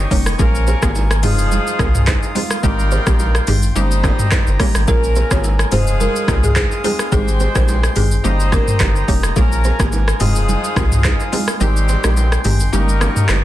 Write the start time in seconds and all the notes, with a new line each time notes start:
Already playing: G4 D#5 C#6
0.11 F1 A#3 C#4 D#4 G4 A#4 C#5, kick, open hi-hat, low conga, shaker
0.26 cross-stick, shaker
0.39 A#1 F3 A#3 C#4 F4 G#4 A#4 G#5, kick, low conga, shaker
0.55 shaker
0.67 G#4 C5, low bongo, shaker
0.82 G#1 A#3 C#4 F4 G4 G#4 A#4, kick, cross-stick, low bongo, shaker
0.95 high bongo, shaker
1.11 cross-stick, shaker
1.23 F1 F3 G#3 C4 D#4 F4 G#4 F5 D#6, mid tom, open hi-hat, high bongo, shaker
1.38 shaker
1.52 low conga, shaker
1.67 shaker
1.79 C2 G#3 C4 D#4 F4 G4 A#4, kick, cross-stick, low bongo, shaker
1.95 mid tom, shaker
2.07 G#4 C5, kick, cross-stick, clap, high bongo, shaker
2.23 shaker
2.35 G#3 C4 D#4 F4 G#4 C5, open hi-hat, low conga, shaker
2.51 cross-stick, shaker
2.63 G#1 G3 G#3 A#3 C4 D#4 G4 A#4 G5 C6, kick, low conga, shaker
2.79 shaker
2.91 G#4 C5, low bongo, shaker
3.07 A#1 G#3 C4 D#4 G4 A#4, kick, cross-stick, low bongo, shaker
3.19 high bongo, shaker
3.35 cross-stick, shaker
3.47 G#1 G#3 C4 D#4 F4 G4 G#4, mid tom, open hi-hat, high bongo, shaker
3.63 shaker
3.75 G1 G3 A#3 C4 C#4 D#4 G4 C5 D#5 A#5, low conga, shaker
3.91 shaker
4.04 A#3 C#4 D#4 G4 A#4, kick, cross-stick, low bongo, shaker
4.19 mid tom, shaker
4.31 G4 C5, kick, cross-stick, clap, high bongo, shaker
4.47 G1, shaker
4.60 A#3 C#4 D#4 G4 A#4 C#5, kick, cross-stick, open hi-hat, high bongo, low conga, shaker
4.75 G#1, cross-stick, shaker
4.88 A#1 F3 A#3 C#4 F4 G#4 A#4 G#5, kick, low conga, shaker
5.04 shaker
5.16 G#4 C5, low bongo, shaker
5.31 G#1 A#3 C#4 F4 G4 G#4 A#4 C#5, kick, cross-stick, low bongo, shaker
5.44 high bongo, shaker
5.59 cross-stick, shaker
5.72 F1 F3 G#3 C4 D#4 F4 G#4 C5 F5 D#6, mid tom, open hi-hat, high bongo, shaker
5.87 shaker
6.00 A#4, low conga, shaker
6.16 shaker
6.28 C2 G#3 C4 D#4 F4 G4 A#4, kick, cross-stick, low bongo, shaker
6.43 G#4, mid tom, shaker
6.56 G#4 C5, kick, cross-stick, clap, high bongo, shaker
6.71 shaker
6.84 G#3 C4 D#4 F4 G#4 C5, open hi-hat, low conga, shaker
6.99 cross-stick, shaker
7.12 G#1 G#3 C4 D#4 G4 G#4 A#4 C5 G5 C6, kick, low conga, shaker
7.28 shaker
7.40 G#4 C5, low bongo, shaker
7.55 A#1 G#3 C4 D#4 G4 A#4 C5, kick, cross-stick, low bongo, shaker
7.68 high bongo, shaker
7.83 cross-stick, shaker
7.96 G#1 G#3 C4 D#4 F4 G4 G#4, mid tom, open hi-hat, high bongo, shaker
8.11 shaker
8.24 G1 G3 A#3 C4 C#4 D#4 G4 C5 D#5 A#5, low conga, shaker
8.40 shaker
8.52 A#3 C#4 D#4 G4 A#4, kick, cross-stick, low bongo, shaker
8.68 mid tom, shaker
8.80 G1 G4 C5, kick, cross-stick, clap, high bongo, shaker
8.96 shaker
9.08 F1 A#3 C#4 D#4 G4 A#4 C#5, kick, open hi-hat, low conga, shaker
9.23 cross-stick, shaker
9.36 A#1 F3 A#3 C#4 F4 G#4 A#4 G#5, kick, low conga, shaker
9.52 shaker
9.64 G#4 C5, low bongo, shaker
9.79 G#1 A#3 C#4 F4 G4 G#4 A#4, kick, cross-stick, low bongo, shaker
9.92 high bongo, shaker
10.08 cross-stick, shaker
10.20 F1 F3 G#3 C4 D#4 F4 G#4 F5 D#6, mid tom, open hi-hat, high bongo, shaker
10.36 shaker
10.49 low conga, shaker
10.64 shaker
10.76 C2 G#3 C4 D#4 F4 G4 A#4, kick, cross-stick, low bongo, shaker
10.92 mid tom, shaker
11.04 G#4 C5, kick, cross-stick, clap, high bongo, shaker
11.20 shaker
11.32 G#3 C4 D#4 F4 G#4 C5, open hi-hat, low conga, shaker
11.48 cross-stick, shaker
11.60 G#1 D#3 G3 G#3 C4 D#4 G4 A#4 G5 C6, low conga, shaker
11.77 shaker
11.88 G#4 C5, low bongo, shaker
12.04 A#1 G#3 C4 D#4 G4 A#4, cross-stick, low bongo, shaker
12.17 high bongo, shaker
12.32 cross-stick, shaker
12.44 G#1 G#3 C4 D#4 F4 G4 G#4, mid tom, open hi-hat, high bongo, shaker
12.60 shaker
12.73 G1 G3 A#3 C#4 D#4 G4 A#4 D#5 C#6, low conga, shaker
12.89 shaker
13.01 A#3 C#4 D#4 G4 A#4, cross-stick, low bongo, shaker
13.16 mid tom, shaker
13.29 G1 G4 C5, cross-stick, clap, high bongo, shaker